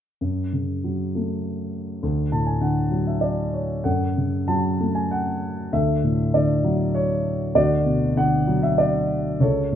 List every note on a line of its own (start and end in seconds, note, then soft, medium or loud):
0.21 1.99 F#2 soft
0.53 1.70 C#3 soft
0.84 1.99 F#3 soft
1.15 2.00 A3 soft
2.03 3.81 D2 soft
2.32 3.50 A2 soft
2.32 2.46 A5 soft
2.47 2.60 G#5 soft
2.61 3.81 D3 soft
2.61 3.04 F#5 soft
2.91 3.82 F#3 soft
3.07 3.21 E5 soft
3.21 3.86 D5 soft
3.53 3.83 C#5 soft
3.84 5.69 F#2 soft
3.84 4.76 A4 soft
3.84 4.44 F#5 medium
4.17 5.39 C#3 soft
4.48 5.69 F#3 soft
4.48 4.97 A5 medium
4.80 5.70 A3 soft
4.95 5.11 G#5 medium
5.11 5.75 F#5 medium
5.73 7.51 D2 soft
5.73 6.61 A4 soft
5.73 6.30 E5 medium
6.04 7.21 A2 soft
6.34 7.52 D3 soft
6.34 6.97 D5 medium
6.64 7.52 F#3 soft
6.95 7.57 C#5 medium
7.55 9.37 D2 soft
7.55 8.45 F#4 soft
7.55 8.19 D5 medium
7.85 9.06 B2 soft
8.17 9.37 D3 soft
8.17 8.65 F#5 medium
8.47 9.38 F#3 soft
8.63 8.78 E5 medium
8.78 9.43 D5 medium
9.40 9.76 C#2 soft
9.40 9.76 A4 soft
9.40 9.76 C#5 medium
9.72 9.76 A2 soft